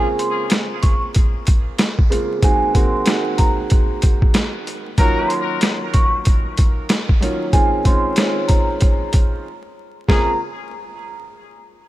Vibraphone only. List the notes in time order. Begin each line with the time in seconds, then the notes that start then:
Already playing: G#5
0.19 C6
0.82 C#6
2.44 G#5
2.76 C6
3.38 A#5
4.98 A#5
5.28 C6
5.94 C#6
7.53 G#5
7.86 C6
8.48 A#5
10.08 A#5